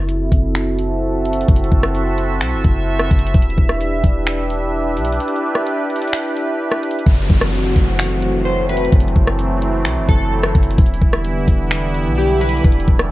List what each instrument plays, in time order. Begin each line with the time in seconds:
Already playing: 808-style bass F#1, analog synth pad C4 E4 F#4 A4 E5
0.09 closed hi-hat
0.32 808-style bass F#1, kick, closed hi-hat
0.55 finger snap, closed hi-hat
0.78 closed hi-hat
1.25 closed hi-hat
1.33 closed hi-hat
1.40 closed hi-hat
1.48 808-style bass F#1, kick, closed hi-hat
1.56 closed hi-hat
1.64 closed hi-hat
1.72 808-style bass F#1, kick
1.83 cross-stick
1.95 closed hi-hat
2.18 closed hi-hat
2.41 808-style bass C2, finger snap, closed hi-hat
2.53 808-style bass F#1
2.64 808-style bass F#1, kick, closed hi-hat
2.99 cross-stick
3.11 808-style bass F#1, kick, closed hi-hat
3.19 closed hi-hat
3.26 closed hi-hat
3.34 808-style bass E1, analog synth pad D4 G4 B4, kick, closed hi-hat
3.42 closed hi-hat
3.50 closed hi-hat
3.58 808-style bass E1, kick
3.69 cross-stick
3.81 closed hi-hat
4.04 808-style bass E1, kick, closed hi-hat
4.27 finger snap, closed hi-hat
4.50 closed hi-hat
4.97 808-style bass B1, closed hi-hat
5.05 closed hi-hat
5.12 closed hi-hat
5.20 closed hi-hat
5.28 closed hi-hat
5.36 closed hi-hat
5.55 cross-stick
5.67 closed hi-hat
5.90 closed hi-hat
5.96 closed hi-hat
6.02 closed hi-hat
6.08 closed hi-hat
6.13 finger snap, closed hi-hat
6.36 closed hi-hat
6.71 cross-stick
6.83 closed hi-hat
6.91 closed hi-hat
6.98 closed hi-hat
7.06 808-style bass F#1, analog synth pad E3 F#3 A3 C4 F#4, kick, closed hi-hat, downlifter
7.14 closed hi-hat
7.22 closed hi-hat
7.30 808-style bass F#1, kick
7.41 cross-stick
7.53 closed hi-hat
7.76 808-style bass F#1, kick, closed hi-hat
7.99 finger snap, closed hi-hat
8.22 closed hi-hat
8.45 clean electric guitar C5
8.69 clean electric guitar B4, closed hi-hat
8.77 closed hi-hat
8.85 closed hi-hat
8.92 808-style bass F#1, analog synth pad E4, kick, closed hi-hat
9.00 closed hi-hat
9.08 closed hi-hat
9.16 808-style bass F#1, kick
9.27 cross-stick
9.39 closed hi-hat
9.62 closed hi-hat
9.85 808-style bass C2, finger snap, closed hi-hat
9.97 808-style bass F#1
10.09 808-style bass F#1, clean electric guitar A4, kick, closed hi-hat
10.43 cross-stick
10.55 808-style bass F#1, kick, closed hi-hat
10.63 closed hi-hat
10.71 closed hi-hat
10.78 808-style bass E1, analog synth pad D3 E3 G3 B3, kick, closed hi-hat
10.86 closed hi-hat
10.94 closed hi-hat
11.02 808-style bass E1, kick
11.13 cross-stick
11.25 closed hi-hat
11.48 808-style bass E1, kick, closed hi-hat
11.71 finger snap, closed hi-hat
11.95 closed hi-hat
12.06 808-style bass B1
12.18 clean electric guitar G4
12.41 clean electric guitar B4, closed hi-hat
12.49 closed hi-hat
12.57 closed hi-hat
12.64 808-style bass E1, analog synth pad A3, kick, closed hi-hat
12.72 closed hi-hat
12.80 closed hi-hat
12.88 808-style bass E1, kick
12.99 cross-stick